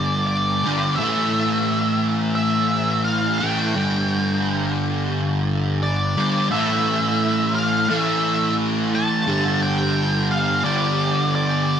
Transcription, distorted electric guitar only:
0, 0, Header, 1, 2, 480
1, 0, Start_track
1, 0, Tempo, 689655
1, 693, Time_signature, 4, 2, 24, 8
1, 8212, End_track
2, 0, Start_track
2, 0, Title_t, "Distorted electric guitar"
2, 0, Program_c, 0, 30
2, 0, Note_on_c, 0, 43, 94
2, 0, Note_on_c, 0, 50, 98
2, 0, Note_on_c, 0, 55, 101
2, 434, Note_off_c, 0, 43, 0
2, 436, Note_off_c, 0, 55, 0
2, 438, Note_off_c, 0, 50, 0
2, 444, Note_on_c, 0, 55, 75
2, 458, Note_on_c, 0, 50, 74
2, 464, Note_on_c, 0, 43, 60
2, 674, Note_off_c, 0, 55, 0
2, 681, Note_off_c, 0, 50, 0
2, 684, Note_off_c, 0, 43, 0
2, 690, Note_on_c, 0, 45, 89
2, 699, Note_on_c, 0, 52, 88
2, 707, Note_on_c, 0, 57, 99
2, 2358, Note_off_c, 0, 45, 0
2, 2359, Note_off_c, 0, 57, 0
2, 2363, Note_off_c, 0, 52, 0
2, 2367, Note_on_c, 0, 57, 79
2, 2379, Note_on_c, 0, 52, 77
2, 2385, Note_on_c, 0, 45, 70
2, 2597, Note_off_c, 0, 57, 0
2, 2603, Note_off_c, 0, 52, 0
2, 2605, Note_on_c, 0, 43, 92
2, 2606, Note_off_c, 0, 45, 0
2, 2613, Note_on_c, 0, 50, 89
2, 2619, Note_on_c, 0, 55, 92
2, 4276, Note_off_c, 0, 43, 0
2, 4280, Note_off_c, 0, 50, 0
2, 4283, Note_off_c, 0, 55, 0
2, 4296, Note_on_c, 0, 55, 86
2, 4302, Note_on_c, 0, 50, 76
2, 4313, Note_on_c, 0, 43, 64
2, 4521, Note_off_c, 0, 50, 0
2, 4521, Note_off_c, 0, 55, 0
2, 4524, Note_on_c, 0, 45, 83
2, 4530, Note_off_c, 0, 43, 0
2, 4531, Note_on_c, 0, 52, 101
2, 4541, Note_on_c, 0, 57, 104
2, 5474, Note_off_c, 0, 45, 0
2, 5478, Note_off_c, 0, 52, 0
2, 5483, Note_off_c, 0, 57, 0
2, 5489, Note_on_c, 0, 45, 69
2, 5497, Note_on_c, 0, 52, 72
2, 5504, Note_on_c, 0, 57, 72
2, 6436, Note_off_c, 0, 45, 0
2, 6440, Note_off_c, 0, 52, 0
2, 6443, Note_off_c, 0, 57, 0
2, 6451, Note_on_c, 0, 43, 83
2, 6460, Note_on_c, 0, 50, 102
2, 6467, Note_on_c, 0, 55, 113
2, 7392, Note_off_c, 0, 43, 0
2, 7401, Note_off_c, 0, 50, 0
2, 7401, Note_on_c, 0, 43, 73
2, 7405, Note_off_c, 0, 55, 0
2, 7409, Note_on_c, 0, 50, 85
2, 7416, Note_on_c, 0, 55, 82
2, 8212, Note_off_c, 0, 43, 0
2, 8212, Note_off_c, 0, 50, 0
2, 8212, Note_off_c, 0, 55, 0
2, 8212, End_track
0, 0, End_of_file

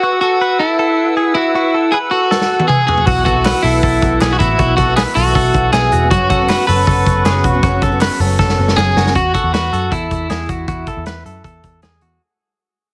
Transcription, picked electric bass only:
0, 0, Header, 1, 2, 480
1, 0, Start_track
1, 0, Key_signature, 4, "major"
1, 0, Tempo, 380469
1, 44, Time_signature, 4, 2, 24, 8
1, 16319, End_track
2, 0, Start_track
2, 0, Title_t, "Picked electric bass"
2, 0, Program_c, 0, 34
2, 3874, Note_on_c, 0, 35, 104
2, 4445, Note_off_c, 0, 35, 0
2, 4589, Note_on_c, 0, 35, 95
2, 4789, Note_off_c, 0, 35, 0
2, 4834, Note_on_c, 0, 35, 106
2, 5031, Note_off_c, 0, 35, 0
2, 5077, Note_on_c, 0, 35, 105
2, 5273, Note_off_c, 0, 35, 0
2, 5313, Note_on_c, 0, 35, 117
2, 5511, Note_off_c, 0, 35, 0
2, 5554, Note_on_c, 0, 33, 89
2, 5751, Note_off_c, 0, 33, 0
2, 5789, Note_on_c, 0, 35, 100
2, 6361, Note_off_c, 0, 35, 0
2, 6515, Note_on_c, 0, 35, 102
2, 6711, Note_off_c, 0, 35, 0
2, 6751, Note_on_c, 0, 35, 115
2, 6949, Note_off_c, 0, 35, 0
2, 6994, Note_on_c, 0, 35, 102
2, 7190, Note_off_c, 0, 35, 0
2, 7233, Note_on_c, 0, 35, 103
2, 7430, Note_off_c, 0, 35, 0
2, 7477, Note_on_c, 0, 28, 102
2, 7711, Note_off_c, 0, 28, 0
2, 7711, Note_on_c, 0, 30, 99
2, 8281, Note_off_c, 0, 30, 0
2, 8438, Note_on_c, 0, 30, 110
2, 8632, Note_off_c, 0, 30, 0
2, 8670, Note_on_c, 0, 30, 115
2, 8867, Note_off_c, 0, 30, 0
2, 8914, Note_on_c, 0, 30, 112
2, 9109, Note_off_c, 0, 30, 0
2, 9147, Note_on_c, 0, 30, 106
2, 9344, Note_off_c, 0, 30, 0
2, 9392, Note_on_c, 0, 28, 87
2, 9587, Note_off_c, 0, 28, 0
2, 9626, Note_on_c, 0, 30, 97
2, 10197, Note_off_c, 0, 30, 0
2, 10341, Note_on_c, 0, 30, 100
2, 10541, Note_off_c, 0, 30, 0
2, 10584, Note_on_c, 0, 30, 95
2, 10782, Note_off_c, 0, 30, 0
2, 10831, Note_on_c, 0, 30, 115
2, 11026, Note_off_c, 0, 30, 0
2, 11069, Note_on_c, 0, 30, 117
2, 11265, Note_off_c, 0, 30, 0
2, 11311, Note_on_c, 0, 30, 90
2, 11506, Note_off_c, 0, 30, 0
2, 11548, Note_on_c, 0, 40, 86
2, 11745, Note_off_c, 0, 40, 0
2, 11907, Note_on_c, 0, 40, 89
2, 12006, Note_off_c, 0, 40, 0
2, 12033, Note_on_c, 0, 40, 86
2, 12228, Note_off_c, 0, 40, 0
2, 12272, Note_on_c, 0, 42, 74
2, 12468, Note_off_c, 0, 42, 0
2, 12511, Note_on_c, 0, 40, 82
2, 12708, Note_off_c, 0, 40, 0
2, 12755, Note_on_c, 0, 40, 98
2, 12951, Note_off_c, 0, 40, 0
2, 12995, Note_on_c, 0, 40, 97
2, 13191, Note_off_c, 0, 40, 0
2, 13236, Note_on_c, 0, 40, 85
2, 13432, Note_off_c, 0, 40, 0
2, 13476, Note_on_c, 0, 40, 78
2, 13672, Note_off_c, 0, 40, 0
2, 13838, Note_on_c, 0, 40, 82
2, 13936, Note_off_c, 0, 40, 0
2, 13959, Note_on_c, 0, 40, 79
2, 14156, Note_off_c, 0, 40, 0
2, 14198, Note_on_c, 0, 42, 66
2, 14395, Note_off_c, 0, 42, 0
2, 14438, Note_on_c, 0, 40, 84
2, 14636, Note_off_c, 0, 40, 0
2, 14683, Note_on_c, 0, 40, 81
2, 14880, Note_off_c, 0, 40, 0
2, 14930, Note_on_c, 0, 40, 79
2, 15124, Note_off_c, 0, 40, 0
2, 15165, Note_on_c, 0, 40, 76
2, 15362, Note_off_c, 0, 40, 0
2, 16319, End_track
0, 0, End_of_file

